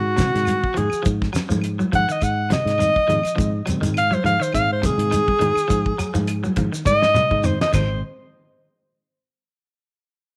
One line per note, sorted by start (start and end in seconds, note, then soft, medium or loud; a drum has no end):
0.00 0.24 G#2 medium
0.00 0.79 F#4 loud
0.16 0.64 A#2 medium
0.16 0.43 C3 medium
0.16 0.65 D#3 medium
0.16 0.65 G#3 medium
0.16 0.65 C4 medium
0.16 kick medium
0.16 snare medium
0.16 closed hi-hat medium
0.16 high conga loud
0.16 shekere medium
0.35 0.57 G#2 medium
0.35 snare soft
0.35 closed hi-hat medium
0.45 closed hi-hat medium
0.45 high conga medium
0.45 claves medium
0.45 shekere medium
0.64 kick medium
0.74 0.89 G#2 loud
0.74 1.00 F3 medium
0.74 1.05 G#4 medium
0.74 closed hi-hat medium
0.74 low conga medium
0.74 shekere soft
0.90 muted fingered electric bass stroke soft
0.90 claves medium
0.90 shekere medium
1.03 1.28 G#2 loud
1.03 1.29 F3 medium
1.03 kick medium
1.03 closed hi-hat medium
1.03 shekere medium
1.22 kick medium
1.22 snare soft
1.33 1.47 F#3 medium
1.33 snare medium
1.33 closed hi-hat medium
1.33 claves medium
1.33 shekere medium
1.49 1.82 G#2 loud
1.49 1.75 F3 medium
1.49 high conga loud
1.49 shekere medium
1.62 closed hi-hat medium
1.62 high conga soft
1.62 claves medium
1.62 shekere soft
1.79 1.91 F#3 medium
1.79 high conga medium
1.79 shekere soft
1.92 2.05 G#2 medium
1.92 2.06 F3 medium
1.92 2.13 F#5 loud
1.92 kick medium
1.92 closed hi-hat medium
1.92 low conga medium
1.92 shekere soft
2.09 2.34 D#3 medium
2.09 2.25 D#5 loud
2.09 shekere medium
2.21 2.56 G#2 medium
2.21 2.51 F#5 medium
2.21 kick medium
2.21 closed hi-hat medium
2.21 high conga soft
2.21 claves medium
2.21 shekere medium
2.50 2.76 C3 medium
2.50 3.65 D#5 loud
2.50 snare medium
2.50 closed hi-hat medium
2.50 high conga medium
2.50 low conga medium
2.50 shekere loud
2.65 2.88 G#2 medium
2.65 snare soft
2.65 closed hi-hat medium
2.78 2.92 A#2 medium
2.78 2.92 D#3 medium
2.78 3.05 D#3 medium
2.78 2.92 G#3 medium
2.78 2.92 C4 medium
2.78 closed hi-hat medium
2.78 high conga medium
2.78 claves medium
2.78 shekere medium
2.96 kick medium
3.08 3.21 G#2 loud
3.08 3.21 A#2 medium
3.08 3.21 D#3 medium
3.08 3.33 F3 medium
3.08 3.21 G#3 medium
3.08 3.21 C4 medium
3.08 closed hi-hat medium
3.08 low conga medium
3.08 shekere soft
3.23 muted fingered electric bass stroke soft
3.23 closed hi-hat soft
3.23 claves medium
3.23 shekere medium
3.36 3.60 G#2 loud
3.36 3.50 A#2 medium
3.36 3.50 D#3 medium
3.36 3.62 F3 medium
3.36 3.50 G#3 medium
3.36 3.50 C4 medium
3.36 kick medium
3.36 closed hi-hat medium
3.40 shekere medium
3.66 4.01 A#2 medium
3.66 4.02 D#3 medium
3.66 3.80 F#3 medium
3.66 4.02 G#3 medium
3.66 4.02 C4 medium
3.66 closed hi-hat medium
3.66 low conga medium
3.66 claves medium
3.66 shekere medium
3.81 4.14 G#2 loud
3.81 4.07 D#3 medium
3.81 closed hi-hat medium
3.81 high conga medium
3.81 shekere medium
3.94 4.15 F5 loud
3.94 closed hi-hat medium
3.94 high conga soft
3.94 claves medium
3.94 shekere soft
4.11 4.23 F#3 medium
4.11 4.25 C5 medium
4.11 high conga medium
4.11 shekere soft
4.24 4.37 G#2 loud
4.24 4.38 F3 medium
4.24 4.44 F5 loud
4.24 closed hi-hat soft
4.24 low conga medium
4.24 shekere soft
4.40 4.65 D#3 medium
4.40 4.54 C5 medium
4.40 shekere medium
4.53 4.88 G#2 loud
4.53 4.66 A#2 medium
4.53 4.66 D#3 medium
4.53 4.66 G#3 medium
4.53 4.67 C4 medium
4.53 4.69 F5 loud
4.53 kick medium
4.53 closed hi-hat medium
4.53 high conga soft
4.53 claves medium
4.53 shekere medium
4.73 4.87 C5 medium
4.82 5.30 A#2 medium
4.82 5.08 C3 medium
4.82 5.30 D#3 medium
4.82 5.30 G#3 medium
4.82 5.30 C4 medium
4.82 6.54 G#4 loud
4.82 kick medium
4.82 closed hi-hat medium
4.82 high conga loud
4.82 shekere medium
4.98 5.20 G#2 medium
4.98 closed hi-hat medium
5.11 5.37 D#3 medium
5.11 closed hi-hat medium
5.11 high conga medium
5.11 claves medium
5.11 shekere medium
5.28 kick medium
5.28 high conga medium
5.39 5.53 G#2 loud
5.39 5.65 D#3 medium
5.39 closed hi-hat medium
5.39 low conga medium
5.39 shekere soft
5.55 muted fingered electric bass stroke soft
5.55 claves medium
5.55 shekere medium
5.68 5.92 G#2 loud
5.68 5.94 F3 medium
5.68 kick medium
5.68 closed hi-hat medium
5.68 shekere medium
5.86 kick medium
5.98 6.12 F#3 medium
5.98 closed hi-hat medium
5.98 claves medium
5.98 shekere medium
6.14 6.47 G#2 loud
6.14 6.39 F3 medium
6.14 high conga medium
6.14 shekere medium
6.27 closed hi-hat medium
6.27 high conga soft
6.27 claves medium
6.27 shekere soft
6.43 6.55 F#3 medium
6.43 high conga medium
6.43 shekere soft
6.56 6.69 G#2 medium
6.56 6.71 F3 medium
6.56 kick medium
6.56 closed hi-hat medium
6.56 low conga medium
6.56 shekere soft
6.72 6.98 D#3 medium
6.72 shekere medium
6.85 7.20 G#2 medium
6.85 7.47 D#5 loud
6.85 kick medium
6.85 high tom soft
6.85 high conga medium
6.85 claves medium
6.85 shekere medium
7.02 snare medium
7.02 high conga medium
7.14 7.40 C3 medium
7.14 mid tom medium
7.14 high conga medium
7.14 shekere medium
7.31 7.53 G#2 medium
7.31 kick medium
7.31 low conga medium
7.43 7.56 A#2 medium
7.43 7.69 D#3 medium
7.43 7.57 D#3 medium
7.43 7.56 G#3 medium
7.43 7.57 C4 medium
7.43 7.60 C5 medium
7.43 mid tom medium
7.43 low conga medium
7.43 claves medium
7.43 shekere medium
7.61 7.73 D#5 loud
7.61 snare medium
7.61 low conga medium
7.73 8.01 G#1 loud
7.73 7.90 G#2 medium
7.73 8.01 A#2 medium
7.73 8.01 D#3 medium
7.73 8.01 G#3 medium
7.73 8.01 C4 medium
7.73 8.02 C5 medium
7.73 kick loud
7.73 crash medium
7.73 low conga loud
7.73 claves loud
7.73 shekere medium